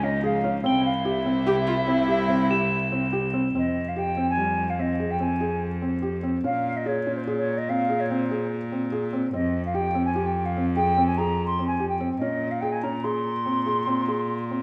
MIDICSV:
0, 0, Header, 1, 7, 480
1, 0, Start_track
1, 0, Key_signature, -4, "minor"
1, 0, Tempo, 413793
1, 749, Time_signature, 7, 2, 24, 8
1, 16965, End_track
2, 0, Start_track
2, 0, Title_t, "Crotales"
2, 0, Program_c, 0, 9
2, 767, Note_on_c, 0, 103, 52
2, 2382, Note_off_c, 0, 103, 0
2, 2908, Note_on_c, 0, 100, 58
2, 4321, Note_off_c, 0, 100, 0
2, 16965, End_track
3, 0, Start_track
3, 0, Title_t, "Flute"
3, 0, Program_c, 1, 73
3, 42, Note_on_c, 1, 75, 82
3, 277, Note_off_c, 1, 75, 0
3, 288, Note_on_c, 1, 77, 78
3, 723, Note_off_c, 1, 77, 0
3, 752, Note_on_c, 1, 79, 87
3, 971, Note_off_c, 1, 79, 0
3, 986, Note_on_c, 1, 77, 75
3, 1206, Note_off_c, 1, 77, 0
3, 1239, Note_on_c, 1, 76, 83
3, 3593, Note_off_c, 1, 76, 0
3, 4148, Note_on_c, 1, 75, 72
3, 4504, Note_on_c, 1, 77, 65
3, 4521, Note_off_c, 1, 75, 0
3, 4617, Note_on_c, 1, 79, 79
3, 4634, Note_off_c, 1, 77, 0
3, 4971, Note_off_c, 1, 79, 0
3, 4984, Note_on_c, 1, 80, 84
3, 5448, Note_on_c, 1, 77, 67
3, 5465, Note_off_c, 1, 80, 0
3, 5568, Note_on_c, 1, 75, 68
3, 5586, Note_off_c, 1, 77, 0
3, 5924, Note_on_c, 1, 79, 71
3, 5942, Note_off_c, 1, 75, 0
3, 6057, Note_on_c, 1, 80, 72
3, 6074, Note_off_c, 1, 79, 0
3, 6527, Note_off_c, 1, 80, 0
3, 7483, Note_on_c, 1, 77, 87
3, 7847, Note_on_c, 1, 75, 67
3, 7864, Note_off_c, 1, 77, 0
3, 7961, Note_on_c, 1, 73, 74
3, 7978, Note_off_c, 1, 75, 0
3, 8296, Note_off_c, 1, 73, 0
3, 8302, Note_on_c, 1, 72, 74
3, 8372, Note_off_c, 1, 72, 0
3, 8546, Note_on_c, 1, 73, 70
3, 8786, Note_on_c, 1, 75, 77
3, 8803, Note_off_c, 1, 73, 0
3, 8922, Note_on_c, 1, 77, 81
3, 8939, Note_off_c, 1, 75, 0
3, 9278, Note_on_c, 1, 73, 71
3, 9295, Note_off_c, 1, 77, 0
3, 9403, Note_on_c, 1, 72, 64
3, 9421, Note_off_c, 1, 73, 0
3, 9875, Note_off_c, 1, 72, 0
3, 10829, Note_on_c, 1, 75, 80
3, 11159, Note_off_c, 1, 75, 0
3, 11202, Note_on_c, 1, 77, 66
3, 11303, Note_on_c, 1, 79, 77
3, 11321, Note_off_c, 1, 77, 0
3, 11653, Note_off_c, 1, 79, 0
3, 11660, Note_on_c, 1, 80, 77
3, 11897, Note_on_c, 1, 79, 69
3, 11915, Note_off_c, 1, 80, 0
3, 12123, Note_on_c, 1, 77, 72
3, 12141, Note_off_c, 1, 79, 0
3, 12369, Note_off_c, 1, 77, 0
3, 12477, Note_on_c, 1, 79, 86
3, 12818, Note_off_c, 1, 79, 0
3, 12838, Note_on_c, 1, 80, 79
3, 12961, Note_on_c, 1, 82, 90
3, 12979, Note_off_c, 1, 80, 0
3, 13293, Note_off_c, 1, 82, 0
3, 13300, Note_on_c, 1, 84, 83
3, 13530, Note_off_c, 1, 84, 0
3, 13537, Note_on_c, 1, 80, 76
3, 13775, Note_off_c, 1, 80, 0
3, 13788, Note_on_c, 1, 79, 75
3, 14020, Note_off_c, 1, 79, 0
3, 14136, Note_on_c, 1, 75, 77
3, 14510, Note_on_c, 1, 77, 67
3, 14527, Note_off_c, 1, 75, 0
3, 14625, Note_on_c, 1, 79, 76
3, 14642, Note_off_c, 1, 77, 0
3, 14751, Note_on_c, 1, 80, 71
3, 14769, Note_off_c, 1, 79, 0
3, 14882, Note_on_c, 1, 82, 74
3, 14900, Note_off_c, 1, 80, 0
3, 15123, Note_on_c, 1, 84, 86
3, 15140, Note_off_c, 1, 82, 0
3, 16965, Note_off_c, 1, 84, 0
3, 16965, End_track
4, 0, Start_track
4, 0, Title_t, "Viola"
4, 0, Program_c, 2, 41
4, 1700, Note_on_c, 2, 67, 87
4, 1806, Note_off_c, 2, 67, 0
4, 1934, Note_on_c, 2, 65, 83
4, 2041, Note_off_c, 2, 65, 0
4, 2171, Note_on_c, 2, 64, 80
4, 3092, Note_off_c, 2, 64, 0
4, 16965, End_track
5, 0, Start_track
5, 0, Title_t, "Felt piano"
5, 0, Program_c, 3, 0
5, 33, Note_on_c, 3, 61, 73
5, 179, Note_off_c, 3, 61, 0
5, 273, Note_on_c, 3, 68, 77
5, 418, Note_off_c, 3, 68, 0
5, 507, Note_on_c, 3, 61, 76
5, 653, Note_off_c, 3, 61, 0
5, 741, Note_on_c, 3, 60, 80
5, 1032, Note_off_c, 3, 60, 0
5, 1219, Note_on_c, 3, 67, 70
5, 1365, Note_off_c, 3, 67, 0
5, 1458, Note_on_c, 3, 60, 70
5, 1603, Note_off_c, 3, 60, 0
5, 1697, Note_on_c, 3, 67, 78
5, 1987, Note_off_c, 3, 67, 0
5, 2173, Note_on_c, 3, 60, 71
5, 2319, Note_off_c, 3, 60, 0
5, 2413, Note_on_c, 3, 67, 69
5, 2560, Note_off_c, 3, 67, 0
5, 2652, Note_on_c, 3, 60, 74
5, 2799, Note_off_c, 3, 60, 0
5, 2898, Note_on_c, 3, 67, 67
5, 3195, Note_off_c, 3, 67, 0
5, 3384, Note_on_c, 3, 60, 67
5, 3534, Note_off_c, 3, 60, 0
5, 3626, Note_on_c, 3, 67, 74
5, 3777, Note_off_c, 3, 67, 0
5, 3870, Note_on_c, 3, 60, 70
5, 4020, Note_off_c, 3, 60, 0
5, 4118, Note_on_c, 3, 60, 67
5, 4412, Note_off_c, 3, 60, 0
5, 4594, Note_on_c, 3, 67, 62
5, 4743, Note_off_c, 3, 67, 0
5, 4837, Note_on_c, 3, 60, 63
5, 4986, Note_off_c, 3, 60, 0
5, 5075, Note_on_c, 3, 55, 68
5, 5371, Note_off_c, 3, 55, 0
5, 5557, Note_on_c, 3, 60, 61
5, 5706, Note_off_c, 3, 60, 0
5, 5798, Note_on_c, 3, 68, 57
5, 5945, Note_off_c, 3, 68, 0
5, 6030, Note_on_c, 3, 60, 63
5, 6179, Note_off_c, 3, 60, 0
5, 6272, Note_on_c, 3, 68, 62
5, 6566, Note_off_c, 3, 68, 0
5, 6752, Note_on_c, 3, 60, 57
5, 6900, Note_off_c, 3, 60, 0
5, 6987, Note_on_c, 3, 67, 68
5, 7137, Note_off_c, 3, 67, 0
5, 7230, Note_on_c, 3, 60, 66
5, 7379, Note_off_c, 3, 60, 0
5, 7471, Note_on_c, 3, 61, 69
5, 7764, Note_off_c, 3, 61, 0
5, 7956, Note_on_c, 3, 68, 68
5, 8102, Note_off_c, 3, 68, 0
5, 8198, Note_on_c, 3, 61, 64
5, 8343, Note_off_c, 3, 61, 0
5, 8438, Note_on_c, 3, 68, 68
5, 8729, Note_off_c, 3, 68, 0
5, 8921, Note_on_c, 3, 60, 66
5, 9065, Note_off_c, 3, 60, 0
5, 9159, Note_on_c, 3, 68, 63
5, 9302, Note_off_c, 3, 68, 0
5, 9400, Note_on_c, 3, 60, 68
5, 9543, Note_off_c, 3, 60, 0
5, 9640, Note_on_c, 3, 68, 67
5, 9928, Note_off_c, 3, 68, 0
5, 10116, Note_on_c, 3, 60, 61
5, 10259, Note_off_c, 3, 60, 0
5, 10351, Note_on_c, 3, 68, 71
5, 10495, Note_off_c, 3, 68, 0
5, 10591, Note_on_c, 3, 60, 70
5, 10735, Note_off_c, 3, 60, 0
5, 10828, Note_on_c, 3, 60, 74
5, 11116, Note_off_c, 3, 60, 0
5, 11302, Note_on_c, 3, 67, 69
5, 11446, Note_off_c, 3, 67, 0
5, 11540, Note_on_c, 3, 60, 69
5, 11685, Note_off_c, 3, 60, 0
5, 11779, Note_on_c, 3, 67, 72
5, 12069, Note_off_c, 3, 67, 0
5, 12259, Note_on_c, 3, 60, 61
5, 12403, Note_off_c, 3, 60, 0
5, 12490, Note_on_c, 3, 68, 64
5, 12636, Note_off_c, 3, 68, 0
5, 12730, Note_on_c, 3, 60, 67
5, 12877, Note_off_c, 3, 60, 0
5, 12973, Note_on_c, 3, 68, 68
5, 13263, Note_off_c, 3, 68, 0
5, 13445, Note_on_c, 3, 60, 57
5, 13592, Note_off_c, 3, 60, 0
5, 13684, Note_on_c, 3, 67, 66
5, 13831, Note_off_c, 3, 67, 0
5, 13922, Note_on_c, 3, 60, 67
5, 14070, Note_off_c, 3, 60, 0
5, 14168, Note_on_c, 3, 61, 73
5, 14460, Note_off_c, 3, 61, 0
5, 14645, Note_on_c, 3, 68, 66
5, 14793, Note_off_c, 3, 68, 0
5, 14886, Note_on_c, 3, 61, 66
5, 15034, Note_off_c, 3, 61, 0
5, 15130, Note_on_c, 3, 68, 71
5, 15425, Note_off_c, 3, 68, 0
5, 15610, Note_on_c, 3, 60, 57
5, 15759, Note_off_c, 3, 60, 0
5, 15849, Note_on_c, 3, 68, 62
5, 15999, Note_off_c, 3, 68, 0
5, 16091, Note_on_c, 3, 60, 64
5, 16241, Note_off_c, 3, 60, 0
5, 16337, Note_on_c, 3, 68, 61
5, 16634, Note_off_c, 3, 68, 0
5, 16824, Note_on_c, 3, 60, 57
5, 16965, Note_off_c, 3, 60, 0
5, 16965, End_track
6, 0, Start_track
6, 0, Title_t, "String section"
6, 0, Program_c, 4, 48
6, 0, Note_on_c, 4, 49, 82
6, 0, Note_on_c, 4, 53, 67
6, 0, Note_on_c, 4, 63, 76
6, 699, Note_off_c, 4, 63, 0
6, 717, Note_off_c, 4, 49, 0
6, 717, Note_off_c, 4, 53, 0
6, 752, Note_on_c, 4, 55, 69
6, 756, Note_on_c, 4, 64, 89
6, 757, Note_on_c, 4, 48, 76
6, 4087, Note_off_c, 4, 55, 0
6, 4089, Note_off_c, 4, 64, 0
6, 4090, Note_off_c, 4, 48, 0
6, 16965, End_track
7, 0, Start_track
7, 0, Title_t, "Cello"
7, 0, Program_c, 5, 42
7, 0, Note_on_c, 5, 37, 82
7, 751, Note_on_c, 5, 36, 78
7, 769, Note_off_c, 5, 37, 0
7, 4074, Note_off_c, 5, 36, 0
7, 4121, Note_on_c, 5, 41, 65
7, 7477, Note_on_c, 5, 46, 71
7, 7495, Note_off_c, 5, 41, 0
7, 10832, Note_on_c, 5, 41, 75
7, 10850, Note_off_c, 5, 46, 0
7, 14169, Note_on_c, 5, 46, 68
7, 14186, Note_off_c, 5, 41, 0
7, 16965, Note_off_c, 5, 46, 0
7, 16965, End_track
0, 0, End_of_file